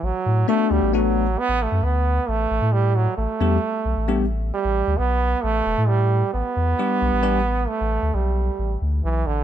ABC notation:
X:1
M:7/4
L:1/16
Q:1/4=133
K:G
V:1 name="Tine electric piano"
z4 [A,B,DF]4 [A,B,DF]2 z16 z2 | z2 [G,B,DG]2 z4 [G,B,DG]2 z16 z2 | z4 [G,B,DG]4 [G,B,DG]2 z16 z2 |]
V:2 name="Trombone" clef=bass
F,4 A,2 G,2 F,4 B,2 A,2 B,4 A,4 G,2 F,2 | A,8- A,2 z2 G,4 B,4 A,4 G,4 | B,12 A,4 G,6 z2 E,2 D,2 |]
V:3 name="Sub bass" clef=bass
A,,, z A,,2 z2 D,, A,,,6 A,,,2 F,, D,,4 A,,,2 A,,, A,,4- A,, | A,,, z E,,2 z2 B,,, A,,,6 A,,,2 D,, B,,,4 A,,,2 E,,, A,,4- A,, | A,,, z E,,2 z2 B,,, A,,,6 A,,,2 D,, B,,,4 A,,,2 D,,2 B,,,2 A,,,2 |]